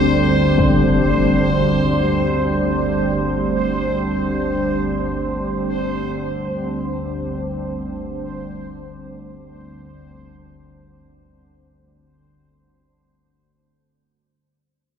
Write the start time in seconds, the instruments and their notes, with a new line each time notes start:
Already playing: synth drone G1 D2, analog synth pad G3 C4 D4 C5, synth texture C5
0.58 impact